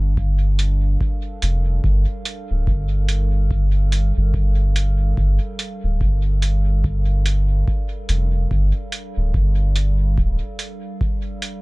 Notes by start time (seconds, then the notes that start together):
Already playing: G1 G3 D4 A4 C5 F5
0.17 kick
0.35 A#4
0.59 closed hi-hat
1.01 kick
1.42 F1, closed hi-hat
1.84 G1, kick
2.25 closed hi-hat
2.51 D1
2.67 G1, kick
3.09 closed hi-hat
3.51 kick
3.92 closed hi-hat
4.17 G1
4.34 kick
4.76 closed hi-hat
5.17 G1, kick
5.59 closed hi-hat
5.84 D1
6.01 G1, kick
6.42 closed hi-hat
6.84 kick
7.26 closed hi-hat
7.68 kick
8.09 F1, closed hi-hat
8.51 G1, kick
8.92 closed hi-hat
9.17 D1
9.34 G1, kick
9.76 closed hi-hat
10.17 D1, kick
10.59 closed hi-hat
11.01 kick
11.42 closed hi-hat